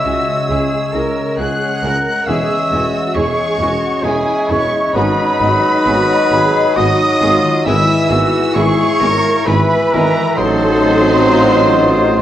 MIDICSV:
0, 0, Header, 1, 13, 480
1, 0, Start_track
1, 0, Tempo, 888889
1, 1230, Time_signature, 3, 2, 24, 8
1, 2183, Tempo, 903614
1, 4583, Tempo, 907716
1, 6023, Tempo, 972447
1, 6485, End_track
2, 0, Start_track
2, 0, Title_t, "Flute"
2, 0, Program_c, 0, 73
2, 0, Note_on_c, 0, 88, 99
2, 586, Note_off_c, 0, 88, 0
2, 749, Note_on_c, 0, 90, 88
2, 1232, Note_on_c, 0, 88, 103
2, 1240, Note_off_c, 0, 90, 0
2, 1703, Note_off_c, 0, 88, 0
2, 1706, Note_on_c, 0, 85, 96
2, 2184, Note_on_c, 0, 80, 93
2, 2192, Note_off_c, 0, 85, 0
2, 2430, Note_on_c, 0, 85, 101
2, 2438, Note_off_c, 0, 80, 0
2, 2668, Note_off_c, 0, 85, 0
2, 2673, Note_on_c, 0, 83, 124
2, 3629, Note_on_c, 0, 87, 118
2, 3637, Note_off_c, 0, 83, 0
2, 4099, Note_off_c, 0, 87, 0
2, 4103, Note_on_c, 0, 88, 120
2, 4427, Note_off_c, 0, 88, 0
2, 4572, Note_on_c, 0, 85, 127
2, 5060, Note_on_c, 0, 83, 95
2, 5068, Note_off_c, 0, 85, 0
2, 5298, Note_on_c, 0, 82, 107
2, 5306, Note_off_c, 0, 83, 0
2, 5534, Note_off_c, 0, 82, 0
2, 5537, Note_on_c, 0, 84, 117
2, 6485, Note_off_c, 0, 84, 0
2, 6485, End_track
3, 0, Start_track
3, 0, Title_t, "Violin section"
3, 0, Program_c, 1, 48
3, 0, Note_on_c, 1, 88, 95
3, 740, Note_off_c, 1, 88, 0
3, 748, Note_on_c, 1, 90, 101
3, 1220, Note_off_c, 1, 90, 0
3, 1224, Note_on_c, 1, 88, 98
3, 1689, Note_off_c, 1, 88, 0
3, 1694, Note_on_c, 1, 85, 110
3, 2178, Note_off_c, 1, 85, 0
3, 2181, Note_on_c, 1, 80, 100
3, 2419, Note_on_c, 1, 85, 111
3, 2426, Note_off_c, 1, 80, 0
3, 2662, Note_off_c, 1, 85, 0
3, 2662, Note_on_c, 1, 83, 121
3, 3606, Note_off_c, 1, 83, 0
3, 3624, Note_on_c, 1, 87, 122
3, 4103, Note_off_c, 1, 87, 0
3, 4105, Note_on_c, 1, 88, 121
3, 4571, Note_off_c, 1, 88, 0
3, 4571, Note_on_c, 1, 85, 127
3, 5058, Note_off_c, 1, 85, 0
3, 5058, Note_on_c, 1, 83, 111
3, 5305, Note_off_c, 1, 83, 0
3, 5306, Note_on_c, 1, 82, 125
3, 5533, Note_on_c, 1, 84, 113
3, 5546, Note_off_c, 1, 82, 0
3, 6485, Note_off_c, 1, 84, 0
3, 6485, End_track
4, 0, Start_track
4, 0, Title_t, "Oboe"
4, 0, Program_c, 2, 68
4, 0, Note_on_c, 2, 73, 68
4, 1082, Note_off_c, 2, 73, 0
4, 1225, Note_on_c, 2, 73, 70
4, 1678, Note_off_c, 2, 73, 0
4, 1713, Note_on_c, 2, 73, 71
4, 2178, Note_off_c, 2, 73, 0
4, 2188, Note_on_c, 2, 73, 82
4, 2669, Note_on_c, 2, 75, 87
4, 2677, Note_off_c, 2, 73, 0
4, 3628, Note_off_c, 2, 75, 0
4, 3637, Note_on_c, 2, 75, 91
4, 4100, Note_off_c, 2, 75, 0
4, 4109, Note_on_c, 2, 76, 96
4, 4901, Note_off_c, 2, 76, 0
4, 5056, Note_on_c, 2, 76, 98
4, 5545, Note_on_c, 2, 75, 95
4, 5553, Note_off_c, 2, 76, 0
4, 6485, Note_off_c, 2, 75, 0
4, 6485, End_track
5, 0, Start_track
5, 0, Title_t, "Trumpet"
5, 0, Program_c, 3, 56
5, 0, Note_on_c, 3, 76, 92
5, 601, Note_off_c, 3, 76, 0
5, 746, Note_on_c, 3, 78, 93
5, 1226, Note_on_c, 3, 76, 92
5, 1235, Note_off_c, 3, 78, 0
5, 1700, Note_on_c, 3, 73, 97
5, 1708, Note_off_c, 3, 76, 0
5, 2181, Note_on_c, 3, 68, 90
5, 2189, Note_off_c, 3, 73, 0
5, 2426, Note_on_c, 3, 73, 96
5, 2434, Note_off_c, 3, 68, 0
5, 2664, Note_off_c, 3, 73, 0
5, 2667, Note_on_c, 3, 71, 115
5, 3627, Note_on_c, 3, 75, 109
5, 3635, Note_off_c, 3, 71, 0
5, 4100, Note_off_c, 3, 75, 0
5, 4103, Note_on_c, 3, 76, 116
5, 4427, Note_off_c, 3, 76, 0
5, 4577, Note_on_c, 3, 73, 127
5, 5062, Note_on_c, 3, 71, 99
5, 5070, Note_off_c, 3, 73, 0
5, 5305, Note_on_c, 3, 70, 103
5, 5313, Note_off_c, 3, 71, 0
5, 5538, Note_off_c, 3, 70, 0
5, 5541, Note_on_c, 3, 72, 104
5, 6485, Note_off_c, 3, 72, 0
5, 6485, End_track
6, 0, Start_track
6, 0, Title_t, "Cello section"
6, 0, Program_c, 4, 48
6, 21, Note_on_c, 4, 66, 69
6, 260, Note_on_c, 4, 68, 71
6, 262, Note_off_c, 4, 66, 0
6, 499, Note_off_c, 4, 68, 0
6, 506, Note_on_c, 4, 70, 71
6, 748, Note_off_c, 4, 70, 0
6, 748, Note_on_c, 4, 68, 73
6, 989, Note_off_c, 4, 68, 0
6, 991, Note_on_c, 4, 70, 74
6, 1230, Note_off_c, 4, 70, 0
6, 1231, Note_on_c, 4, 68, 74
6, 1463, Note_off_c, 4, 68, 0
6, 1468, Note_on_c, 4, 66, 74
6, 1697, Note_off_c, 4, 66, 0
6, 1703, Note_on_c, 4, 68, 76
6, 1938, Note_off_c, 4, 68, 0
6, 1939, Note_on_c, 4, 66, 72
6, 2183, Note_off_c, 4, 66, 0
6, 2185, Note_on_c, 4, 64, 73
6, 2667, Note_off_c, 4, 64, 0
6, 2667, Note_on_c, 4, 63, 80
6, 3136, Note_off_c, 4, 63, 0
6, 3147, Note_on_c, 4, 66, 87
6, 3387, Note_on_c, 4, 68, 88
6, 3388, Note_off_c, 4, 66, 0
6, 3626, Note_on_c, 4, 66, 89
6, 3627, Note_off_c, 4, 68, 0
6, 3865, Note_on_c, 4, 65, 81
6, 3867, Note_off_c, 4, 66, 0
6, 4101, Note_on_c, 4, 64, 89
6, 4104, Note_off_c, 4, 65, 0
6, 4335, Note_off_c, 4, 64, 0
6, 4341, Note_on_c, 4, 66, 97
6, 4580, Note_on_c, 4, 68, 91
6, 4581, Note_off_c, 4, 66, 0
6, 4818, Note_on_c, 4, 70, 98
6, 4820, Note_off_c, 4, 68, 0
6, 5059, Note_on_c, 4, 71, 98
6, 5062, Note_off_c, 4, 70, 0
6, 5543, Note_on_c, 4, 69, 107
6, 5544, Note_off_c, 4, 71, 0
6, 6019, Note_off_c, 4, 69, 0
6, 6020, Note_on_c, 4, 65, 95
6, 6485, Note_off_c, 4, 65, 0
6, 6485, End_track
7, 0, Start_track
7, 0, Title_t, "Violin section"
7, 0, Program_c, 5, 48
7, 27, Note_on_c, 5, 64, 52
7, 31, Note_on_c, 5, 68, 52
7, 70, Note_off_c, 5, 64, 0
7, 74, Note_off_c, 5, 68, 0
7, 268, Note_on_c, 5, 68, 57
7, 270, Note_on_c, 5, 64, 59
7, 311, Note_off_c, 5, 68, 0
7, 313, Note_off_c, 5, 64, 0
7, 506, Note_on_c, 5, 64, 55
7, 506, Note_on_c, 5, 68, 59
7, 549, Note_off_c, 5, 64, 0
7, 549, Note_off_c, 5, 68, 0
7, 752, Note_on_c, 5, 64, 58
7, 752, Note_on_c, 5, 68, 65
7, 795, Note_off_c, 5, 64, 0
7, 795, Note_off_c, 5, 68, 0
7, 996, Note_on_c, 5, 64, 59
7, 996, Note_on_c, 5, 68, 61
7, 1039, Note_off_c, 5, 68, 0
7, 1040, Note_off_c, 5, 64, 0
7, 1233, Note_on_c, 5, 68, 71
7, 1234, Note_on_c, 5, 64, 69
7, 1277, Note_off_c, 5, 68, 0
7, 1278, Note_off_c, 5, 64, 0
7, 1477, Note_on_c, 5, 68, 62
7, 1479, Note_on_c, 5, 64, 62
7, 1520, Note_off_c, 5, 68, 0
7, 1523, Note_off_c, 5, 64, 0
7, 1706, Note_on_c, 5, 68, 65
7, 1710, Note_on_c, 5, 64, 66
7, 1749, Note_off_c, 5, 68, 0
7, 1753, Note_off_c, 5, 64, 0
7, 1950, Note_on_c, 5, 64, 62
7, 1955, Note_on_c, 5, 68, 66
7, 1993, Note_off_c, 5, 64, 0
7, 1998, Note_off_c, 5, 68, 0
7, 2193, Note_on_c, 5, 64, 72
7, 2194, Note_on_c, 5, 68, 71
7, 2235, Note_off_c, 5, 64, 0
7, 2236, Note_off_c, 5, 68, 0
7, 2427, Note_on_c, 5, 64, 73
7, 2432, Note_on_c, 5, 68, 70
7, 2469, Note_off_c, 5, 64, 0
7, 2474, Note_off_c, 5, 68, 0
7, 2671, Note_on_c, 5, 66, 80
7, 2671, Note_on_c, 5, 68, 83
7, 2713, Note_off_c, 5, 66, 0
7, 2714, Note_off_c, 5, 68, 0
7, 2907, Note_on_c, 5, 68, 65
7, 2911, Note_on_c, 5, 66, 68
7, 2950, Note_off_c, 5, 68, 0
7, 2954, Note_off_c, 5, 66, 0
7, 3146, Note_on_c, 5, 66, 72
7, 3149, Note_on_c, 5, 68, 75
7, 3189, Note_off_c, 5, 66, 0
7, 3192, Note_off_c, 5, 68, 0
7, 3396, Note_on_c, 5, 68, 78
7, 3397, Note_on_c, 5, 66, 76
7, 3438, Note_off_c, 5, 68, 0
7, 3439, Note_off_c, 5, 66, 0
7, 3633, Note_on_c, 5, 66, 80
7, 3635, Note_on_c, 5, 68, 80
7, 3675, Note_off_c, 5, 66, 0
7, 3677, Note_off_c, 5, 68, 0
7, 3862, Note_on_c, 5, 66, 80
7, 3865, Note_on_c, 5, 68, 77
7, 3905, Note_off_c, 5, 66, 0
7, 3907, Note_off_c, 5, 68, 0
7, 4104, Note_on_c, 5, 68, 90
7, 4105, Note_on_c, 5, 64, 93
7, 4146, Note_off_c, 5, 68, 0
7, 4148, Note_off_c, 5, 64, 0
7, 4328, Note_on_c, 5, 64, 73
7, 4329, Note_on_c, 5, 68, 78
7, 4371, Note_off_c, 5, 64, 0
7, 4371, Note_off_c, 5, 68, 0
7, 4577, Note_on_c, 5, 68, 79
7, 4582, Note_on_c, 5, 64, 81
7, 4620, Note_off_c, 5, 68, 0
7, 4624, Note_off_c, 5, 64, 0
7, 4816, Note_on_c, 5, 64, 82
7, 4817, Note_on_c, 5, 68, 78
7, 4859, Note_off_c, 5, 64, 0
7, 4859, Note_off_c, 5, 68, 0
7, 5052, Note_on_c, 5, 68, 83
7, 5055, Note_on_c, 5, 64, 82
7, 5095, Note_off_c, 5, 68, 0
7, 5097, Note_off_c, 5, 64, 0
7, 5308, Note_on_c, 5, 68, 81
7, 5309, Note_on_c, 5, 64, 83
7, 5350, Note_off_c, 5, 68, 0
7, 5351, Note_off_c, 5, 64, 0
7, 5547, Note_on_c, 5, 72, 113
7, 5551, Note_on_c, 5, 63, 109
7, 6482, Note_off_c, 5, 72, 0
7, 6484, Note_off_c, 5, 63, 0
7, 6485, End_track
8, 0, Start_track
8, 0, Title_t, "Harp"
8, 0, Program_c, 6, 46
8, 0, Note_on_c, 6, 49, 68
8, 0, Note_on_c, 6, 56, 54
8, 0, Note_on_c, 6, 61, 47
8, 0, Note_on_c, 6, 80, 53
8, 20, Note_on_c, 6, 68, 57
8, 131, Note_off_c, 6, 61, 0
8, 138, Note_on_c, 6, 61, 52
8, 368, Note_off_c, 6, 80, 0
8, 374, Note_on_c, 6, 80, 55
8, 500, Note_on_c, 6, 73, 62
8, 615, Note_off_c, 6, 80, 0
8, 621, Note_on_c, 6, 80, 57
8, 739, Note_off_c, 6, 73, 0
8, 746, Note_on_c, 6, 73, 52
8, 861, Note_off_c, 6, 68, 0
8, 867, Note_on_c, 6, 68, 56
8, 981, Note_off_c, 6, 61, 0
8, 987, Note_on_c, 6, 61, 60
8, 1102, Note_off_c, 6, 56, 0
8, 1108, Note_on_c, 6, 56, 56
8, 1228, Note_on_c, 6, 52, 73
8, 1245, Note_off_c, 6, 49, 0
8, 1336, Note_off_c, 6, 61, 0
8, 1343, Note_on_c, 6, 61, 59
8, 1457, Note_off_c, 6, 68, 0
8, 1464, Note_on_c, 6, 68, 61
8, 1570, Note_off_c, 6, 61, 0
8, 1576, Note_on_c, 6, 61, 59
8, 1689, Note_off_c, 6, 73, 0
8, 1696, Note_on_c, 6, 73, 63
8, 1808, Note_off_c, 6, 80, 0
8, 1815, Note_on_c, 6, 80, 64
8, 1924, Note_off_c, 6, 73, 0
8, 2042, Note_off_c, 6, 80, 0
8, 2174, Note_on_c, 6, 73, 66
8, 2296, Note_off_c, 6, 68, 0
8, 2419, Note_off_c, 6, 61, 0
8, 2426, Note_on_c, 6, 61, 66
8, 2538, Note_off_c, 6, 56, 0
8, 2545, Note_on_c, 6, 56, 62
8, 2664, Note_on_c, 6, 44, 87
8, 2681, Note_off_c, 6, 73, 0
8, 2684, Note_off_c, 6, 52, 0
8, 2685, Note_off_c, 6, 61, 0
8, 2773, Note_off_c, 6, 56, 0
8, 2780, Note_on_c, 6, 56, 63
8, 2901, Note_on_c, 6, 63, 72
8, 3023, Note_on_c, 6, 68, 71
8, 3139, Note_off_c, 6, 63, 0
8, 3146, Note_on_c, 6, 63, 70
8, 3266, Note_on_c, 6, 75, 77
8, 3500, Note_off_c, 6, 75, 0
8, 3506, Note_on_c, 6, 75, 75
8, 3619, Note_off_c, 6, 68, 0
8, 3626, Note_on_c, 6, 68, 71
8, 3739, Note_off_c, 6, 63, 0
8, 3745, Note_on_c, 6, 63, 77
8, 3859, Note_off_c, 6, 56, 0
8, 3866, Note_on_c, 6, 56, 74
8, 3982, Note_on_c, 6, 51, 74
8, 4092, Note_off_c, 6, 44, 0
8, 4099, Note_on_c, 6, 44, 98
8, 4122, Note_off_c, 6, 51, 0
8, 4123, Note_off_c, 6, 63, 0
8, 4124, Note_off_c, 6, 75, 0
8, 4215, Note_off_c, 6, 56, 0
8, 4221, Note_on_c, 6, 56, 71
8, 4339, Note_on_c, 6, 64, 75
8, 4457, Note_off_c, 6, 68, 0
8, 4464, Note_on_c, 6, 68, 80
8, 4570, Note_off_c, 6, 64, 0
8, 4576, Note_on_c, 6, 64, 82
8, 4699, Note_on_c, 6, 76, 80
8, 4815, Note_on_c, 6, 80, 83
8, 4933, Note_off_c, 6, 76, 0
8, 4939, Note_on_c, 6, 76, 79
8, 5051, Note_off_c, 6, 68, 0
8, 5058, Note_on_c, 6, 68, 70
8, 5173, Note_off_c, 6, 64, 0
8, 5179, Note_on_c, 6, 64, 79
8, 5294, Note_off_c, 6, 56, 0
8, 5300, Note_on_c, 6, 56, 75
8, 5424, Note_on_c, 6, 52, 69
8, 5535, Note_on_c, 6, 45, 95
8, 5562, Note_off_c, 6, 44, 0
8, 5562, Note_off_c, 6, 56, 0
8, 5562, Note_off_c, 6, 64, 0
8, 5562, Note_off_c, 6, 80, 0
8, 5563, Note_off_c, 6, 52, 0
8, 5563, Note_off_c, 6, 68, 0
8, 5564, Note_off_c, 6, 76, 0
8, 5655, Note_on_c, 6, 60, 70
8, 5776, Note_on_c, 6, 63, 73
8, 6012, Note_on_c, 6, 72, 75
8, 6127, Note_on_c, 6, 75, 76
8, 6244, Note_on_c, 6, 78, 74
8, 6360, Note_off_c, 6, 75, 0
8, 6366, Note_on_c, 6, 75, 74
8, 6485, Note_off_c, 6, 45, 0
8, 6485, Note_off_c, 6, 60, 0
8, 6485, Note_off_c, 6, 63, 0
8, 6485, Note_off_c, 6, 72, 0
8, 6485, Note_off_c, 6, 75, 0
8, 6485, Note_off_c, 6, 78, 0
8, 6485, End_track
9, 0, Start_track
9, 0, Title_t, "French horn section"
9, 0, Program_c, 7, 60
9, 0, Note_on_c, 7, 56, 68
9, 0, Note_on_c, 7, 61, 66
9, 2583, Note_off_c, 7, 56, 0
9, 2583, Note_off_c, 7, 61, 0
9, 2673, Note_on_c, 7, 54, 89
9, 2673, Note_on_c, 7, 63, 91
9, 3609, Note_off_c, 7, 54, 0
9, 3609, Note_off_c, 7, 63, 0
9, 3629, Note_on_c, 7, 54, 86
9, 3630, Note_on_c, 7, 63, 85
9, 4097, Note_off_c, 7, 54, 0
9, 4097, Note_off_c, 7, 63, 0
9, 4107, Note_on_c, 7, 64, 99
9, 4108, Note_on_c, 7, 52, 97
9, 5045, Note_off_c, 7, 64, 0
9, 5046, Note_off_c, 7, 52, 0
9, 5062, Note_on_c, 7, 64, 92
9, 5063, Note_on_c, 7, 52, 90
9, 5536, Note_off_c, 7, 64, 0
9, 5537, Note_off_c, 7, 52, 0
9, 5549, Note_on_c, 7, 54, 97
9, 5549, Note_on_c, 7, 63, 102
9, 6485, Note_off_c, 7, 54, 0
9, 6485, Note_off_c, 7, 63, 0
9, 6485, End_track
10, 0, Start_track
10, 0, Title_t, "Viola section"
10, 0, Program_c, 8, 48
10, 20, Note_on_c, 8, 56, 55
10, 24, Note_on_c, 8, 61, 53
10, 63, Note_off_c, 8, 56, 0
10, 67, Note_off_c, 8, 61, 0
10, 263, Note_on_c, 8, 56, 60
10, 265, Note_on_c, 8, 61, 58
10, 306, Note_off_c, 8, 56, 0
10, 308, Note_off_c, 8, 61, 0
10, 508, Note_on_c, 8, 56, 52
10, 510, Note_on_c, 8, 61, 55
10, 551, Note_off_c, 8, 56, 0
10, 553, Note_off_c, 8, 61, 0
10, 744, Note_on_c, 8, 56, 56
10, 745, Note_on_c, 8, 61, 61
10, 787, Note_off_c, 8, 56, 0
10, 788, Note_off_c, 8, 61, 0
10, 992, Note_on_c, 8, 61, 60
10, 995, Note_on_c, 8, 56, 60
10, 1036, Note_off_c, 8, 61, 0
10, 1038, Note_off_c, 8, 56, 0
10, 1235, Note_on_c, 8, 56, 76
10, 1235, Note_on_c, 8, 61, 73
10, 1278, Note_off_c, 8, 56, 0
10, 1279, Note_off_c, 8, 61, 0
10, 1472, Note_on_c, 8, 61, 65
10, 1473, Note_on_c, 8, 56, 62
10, 1515, Note_off_c, 8, 61, 0
10, 1516, Note_off_c, 8, 56, 0
10, 1705, Note_on_c, 8, 56, 68
10, 1705, Note_on_c, 8, 61, 67
10, 1748, Note_off_c, 8, 56, 0
10, 1748, Note_off_c, 8, 61, 0
10, 1937, Note_on_c, 8, 61, 64
10, 1940, Note_on_c, 8, 56, 64
10, 1980, Note_off_c, 8, 61, 0
10, 1984, Note_off_c, 8, 56, 0
10, 2185, Note_on_c, 8, 61, 64
10, 2187, Note_on_c, 8, 56, 64
10, 2228, Note_off_c, 8, 61, 0
10, 2230, Note_off_c, 8, 56, 0
10, 2425, Note_on_c, 8, 56, 70
10, 2425, Note_on_c, 8, 61, 67
10, 2467, Note_off_c, 8, 56, 0
10, 2468, Note_off_c, 8, 61, 0
10, 2667, Note_on_c, 8, 56, 90
10, 2667, Note_on_c, 8, 59, 89
10, 2709, Note_off_c, 8, 56, 0
10, 2709, Note_off_c, 8, 59, 0
10, 2899, Note_on_c, 8, 56, 73
10, 2899, Note_on_c, 8, 59, 69
10, 2941, Note_off_c, 8, 56, 0
10, 2941, Note_off_c, 8, 59, 0
10, 3146, Note_on_c, 8, 56, 80
10, 3147, Note_on_c, 8, 59, 75
10, 3188, Note_off_c, 8, 56, 0
10, 3190, Note_off_c, 8, 59, 0
10, 3385, Note_on_c, 8, 56, 71
10, 3386, Note_on_c, 8, 59, 74
10, 3427, Note_off_c, 8, 56, 0
10, 3428, Note_off_c, 8, 59, 0
10, 3627, Note_on_c, 8, 59, 76
10, 3629, Note_on_c, 8, 56, 74
10, 3669, Note_off_c, 8, 59, 0
10, 3671, Note_off_c, 8, 56, 0
10, 3868, Note_on_c, 8, 59, 78
10, 3870, Note_on_c, 8, 56, 80
10, 3911, Note_off_c, 8, 59, 0
10, 3912, Note_off_c, 8, 56, 0
10, 4105, Note_on_c, 8, 56, 99
10, 4107, Note_on_c, 8, 59, 100
10, 4148, Note_off_c, 8, 56, 0
10, 4149, Note_off_c, 8, 59, 0
10, 4342, Note_on_c, 8, 56, 76
10, 4344, Note_on_c, 8, 59, 76
10, 4385, Note_off_c, 8, 56, 0
10, 4386, Note_off_c, 8, 59, 0
10, 4581, Note_on_c, 8, 59, 83
10, 4582, Note_on_c, 8, 56, 85
10, 4624, Note_off_c, 8, 56, 0
10, 4624, Note_off_c, 8, 59, 0
10, 4819, Note_on_c, 8, 59, 80
10, 4821, Note_on_c, 8, 56, 79
10, 4862, Note_off_c, 8, 59, 0
10, 4864, Note_off_c, 8, 56, 0
10, 5065, Note_on_c, 8, 56, 77
10, 5067, Note_on_c, 8, 59, 81
10, 5108, Note_off_c, 8, 56, 0
10, 5109, Note_off_c, 8, 59, 0
10, 5310, Note_on_c, 8, 56, 83
10, 5310, Note_on_c, 8, 59, 81
10, 5352, Note_off_c, 8, 56, 0
10, 5353, Note_off_c, 8, 59, 0
10, 5541, Note_on_c, 8, 54, 114
10, 5543, Note_on_c, 8, 60, 113
10, 6479, Note_off_c, 8, 54, 0
10, 6480, Note_off_c, 8, 60, 0
10, 6485, End_track
11, 0, Start_track
11, 0, Title_t, "Bassoon"
11, 0, Program_c, 10, 70
11, 0, Note_on_c, 10, 56, 67
11, 1060, Note_off_c, 10, 56, 0
11, 1227, Note_on_c, 10, 56, 71
11, 1679, Note_off_c, 10, 56, 0
11, 1697, Note_on_c, 10, 56, 73
11, 2168, Note_off_c, 10, 56, 0
11, 2171, Note_on_c, 10, 56, 78
11, 2665, Note_on_c, 10, 54, 85
11, 2673, Note_off_c, 10, 56, 0
11, 3627, Note_off_c, 10, 54, 0
11, 3629, Note_on_c, 10, 54, 91
11, 4104, Note_on_c, 10, 52, 94
11, 4112, Note_off_c, 10, 54, 0
11, 4915, Note_off_c, 10, 52, 0
11, 5056, Note_on_c, 10, 52, 93
11, 5539, Note_on_c, 10, 54, 97
11, 5547, Note_off_c, 10, 52, 0
11, 6485, Note_off_c, 10, 54, 0
11, 6485, End_track
12, 0, Start_track
12, 0, Title_t, "Double bass section"
12, 0, Program_c, 11, 48
12, 21, Note_on_c, 11, 37, 64
12, 64, Note_off_c, 11, 37, 0
12, 264, Note_on_c, 11, 37, 68
12, 307, Note_off_c, 11, 37, 0
12, 506, Note_on_c, 11, 37, 64
12, 549, Note_off_c, 11, 37, 0
12, 744, Note_on_c, 11, 37, 74
12, 787, Note_off_c, 11, 37, 0
12, 984, Note_on_c, 11, 37, 72
12, 1027, Note_off_c, 11, 37, 0
12, 1234, Note_on_c, 11, 40, 77
12, 1277, Note_off_c, 11, 40, 0
12, 1469, Note_on_c, 11, 40, 76
12, 1512, Note_off_c, 11, 40, 0
12, 1702, Note_on_c, 11, 40, 78
12, 1746, Note_off_c, 11, 40, 0
12, 1933, Note_on_c, 11, 40, 73
12, 1976, Note_off_c, 11, 40, 0
12, 2174, Note_on_c, 11, 40, 85
12, 2217, Note_off_c, 11, 40, 0
12, 2425, Note_on_c, 11, 40, 77
12, 2467, Note_off_c, 11, 40, 0
12, 2662, Note_on_c, 11, 32, 85
12, 2705, Note_off_c, 11, 32, 0
12, 2903, Note_on_c, 11, 32, 89
12, 2946, Note_off_c, 11, 32, 0
12, 3145, Note_on_c, 11, 32, 92
12, 3188, Note_off_c, 11, 32, 0
12, 3385, Note_on_c, 11, 32, 80
12, 3427, Note_off_c, 11, 32, 0
12, 3633, Note_on_c, 11, 32, 90
12, 3676, Note_off_c, 11, 32, 0
12, 3866, Note_on_c, 11, 32, 89
12, 3908, Note_off_c, 11, 32, 0
12, 4104, Note_on_c, 11, 32, 101
12, 4147, Note_off_c, 11, 32, 0
12, 4341, Note_on_c, 11, 32, 92
12, 4383, Note_off_c, 11, 32, 0
12, 4582, Note_on_c, 11, 32, 94
12, 4625, Note_off_c, 11, 32, 0
12, 4820, Note_on_c, 11, 32, 91
12, 4863, Note_off_c, 11, 32, 0
12, 5066, Note_on_c, 11, 32, 97
12, 5108, Note_off_c, 11, 32, 0
12, 5313, Note_on_c, 11, 32, 94
12, 5355, Note_off_c, 11, 32, 0
12, 5549, Note_on_c, 11, 33, 98
12, 6485, Note_off_c, 11, 33, 0
12, 6485, End_track
13, 0, Start_track
13, 0, Title_t, "Tuba"
13, 0, Program_c, 12, 58
13, 21, Note_on_c, 12, 37, 65
13, 118, Note_off_c, 12, 37, 0
13, 265, Note_on_c, 12, 37, 71
13, 361, Note_off_c, 12, 37, 0
13, 505, Note_on_c, 12, 37, 64
13, 603, Note_off_c, 12, 37, 0
13, 749, Note_on_c, 12, 37, 69
13, 845, Note_off_c, 12, 37, 0
13, 989, Note_on_c, 12, 37, 70
13, 1085, Note_off_c, 12, 37, 0
13, 1231, Note_on_c, 12, 28, 75
13, 1326, Note_off_c, 12, 28, 0
13, 1465, Note_on_c, 12, 28, 74
13, 1560, Note_off_c, 12, 28, 0
13, 1705, Note_on_c, 12, 28, 77
13, 1799, Note_off_c, 12, 28, 0
13, 1944, Note_on_c, 12, 28, 74
13, 2040, Note_off_c, 12, 28, 0
13, 2187, Note_on_c, 12, 28, 75
13, 2284, Note_off_c, 12, 28, 0
13, 2429, Note_on_c, 12, 28, 76
13, 2525, Note_off_c, 12, 28, 0
13, 2665, Note_on_c, 12, 32, 88
13, 2760, Note_off_c, 12, 32, 0
13, 2907, Note_on_c, 12, 32, 79
13, 3002, Note_off_c, 12, 32, 0
13, 3145, Note_on_c, 12, 32, 92
13, 3242, Note_off_c, 12, 32, 0
13, 3386, Note_on_c, 12, 32, 84
13, 3482, Note_off_c, 12, 32, 0
13, 3626, Note_on_c, 12, 32, 87
13, 3722, Note_off_c, 12, 32, 0
13, 3866, Note_on_c, 12, 32, 86
13, 3961, Note_off_c, 12, 32, 0
13, 4105, Note_on_c, 12, 32, 93
13, 4200, Note_off_c, 12, 32, 0
13, 4337, Note_on_c, 12, 32, 92
13, 4434, Note_off_c, 12, 32, 0
13, 4579, Note_on_c, 12, 32, 98
13, 4675, Note_off_c, 12, 32, 0
13, 4817, Note_on_c, 12, 32, 85
13, 4915, Note_off_c, 12, 32, 0
13, 5059, Note_on_c, 12, 32, 93
13, 5157, Note_off_c, 12, 32, 0
13, 5303, Note_on_c, 12, 32, 86
13, 5399, Note_off_c, 12, 32, 0
13, 5543, Note_on_c, 12, 33, 93
13, 6485, Note_off_c, 12, 33, 0
13, 6485, End_track
0, 0, End_of_file